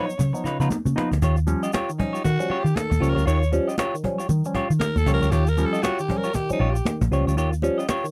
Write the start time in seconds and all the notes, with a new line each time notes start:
Already playing: C#5
0.08 B3 D#4, muted clean electric guitar stroke, shaker
0.18 C#3, muted clean electric guitar stroke, cajon bass, cajon slap, muted conga, low conga, shaker
0.33 F3 B3 D#4, muted clean electric guitar stroke, shaker
0.44 C#3 D#4 F4 B4, muted picked electric bass stroke, cajon slap, shaker
0.60 C#3 F3 B3 D#4 F4 B4, cajon slap, shaker
0.70 B3 D#4, cajon slap, high conga, shaker
0.85 C#3, high conga, shaker
0.95 F3 B3 D#4 F4 B4, cajon slap
1.12 D2, muted clean electric guitar stroke, cajon slap, shaker
1.21 D#2 D#3 F4 G4 C#5, cajon bass, muted conga, shaker
1.37 shaker
1.47 F3 G3 C#4, muted clean electric guitar stroke, muted conga, shaker
1.63 G3 C#4 F4 G4 D#5, shaker
1.73 G3 C#4 F4 G4 C#5, cajon slap, high conga, shaker
1.89 D#3, shaker
1.98 F3 G3 C#4 D#4, muted clean electric guitar stroke, cajon bass, low conga
2.13 F4 G4 C#5, shaker
2.24 D#3 F#4, cajon bass, muted conga, shaker
2.40 F3 G3 C#4, muted clean electric guitar stroke, shaker
2.49 G3 C#4 F4 G4 C#5, muted picked electric bass stroke
2.59 G4
2.65 D#3, muted clean electric guitar stroke, shaker
2.75 D#3 A4, muted clean electric guitar stroke, cajon slap, high conga, shaker
2.90 D#2, muted clean electric guitar stroke, cajon bass, high conga, shaker
3.00 C#2 F3 G3 C#4 F4 G4 C#5, shaker
3.09 A#4
3.15 D2 G3 C#4 F4 G4 C#5, shaker
3.26 D#2 D#3 F4 G4 C#5, shaker
3.41 muted clean electric guitar stroke, shaker
3.52 F3 G3 C#4, muted clean electric guitar stroke, muted conga, shaker
3.68 G3 C#4 F4 G4 D#5, cajon slap, shaker
3.78 G3 C#4 F4 G4 C#5, cajon slap, high conga, shaker
3.94 D#3, shaker
4.04 F3 G3 C#4, muted clean electric guitar stroke, cajon bass, low conga
4.18 F4 G4 C#5, cajon slap, shaker
4.29 D#3, muted clean electric guitar stroke, cajon slap, muted conga, low conga, shaker
4.45 F3 G3 C#4, muted clean electric guitar stroke, shaker
4.54 G3 C#4 F4 G4 C#5, muted picked electric bass stroke, cajon bass
4.70 D#3, muted clean electric guitar stroke, shaker
4.80 D#3 A#4, muted clean electric guitar stroke, cajon slap, high conga, shaker
4.96 D#2 A4, muted clean electric guitar stroke, high conga, shaker
5.06 C#2 F3 G3 C#4 F4 G4 C#5, cajon bass, shaker
5.14 A#4
5.22 D2 G3 C#4 F4 G4 C#5, shaker
5.31 D#2 D#3 F4 G4 C#5, cajon bass, muted conga, shaker
5.47 A#4, muted clean electric guitar stroke, shaker
5.57 F3 G3 C#4, muted clean electric guitar stroke, muted conga, shaker
5.66 A4
5.73 G3 C#4 F4 G4 D#5, shaker
5.83 F4 F#4 G4 C#5, cajon slap, high conga, shaker
5.99 D#3 G4, cajon slap, shaker
6.08 F3 G3 C#4, muted clean electric guitar stroke, cajon bass, low conga
6.18 A#4
6.24 F4 G4 C#5, shaker
6.33 D#3 G4, muted clean electric guitar stroke, cajon bass, muted conga, shaker
6.50 F3 G3 C#4 D#4, muted clean electric guitar stroke, muted picked electric bass stroke, shaker
6.60 A#1 G3 C#4 F4 G4 C#5, cajon slap
6.71 G4
6.76 muted clean electric guitar stroke, cajon slap, shaker
6.85 D#3, muted clean electric guitar stroke, cajon slap, high conga, shaker
7.01 A#1, muted clean electric guitar stroke, cajon bass, high conga, shaker
7.11 C#2 F3 G3 C#4 F4 G4 C#5, shaker
7.27 D2 G3 C#4 F4 G4 C#5, shaker
7.37 D#2 D#3 F4 G4 C#5, shaker
7.52 muted clean electric guitar stroke, shaker
7.62 F3 G3 C#4, muted clean electric guitar stroke, muted conga, shaker
7.78 G3 C#4 F4 G4 D#5, cajon slap, shaker
7.89 G3 C#4 F4 G4 C#5, cajon slap, high conga, shaker
8.04 D#3, cajon slap, shaker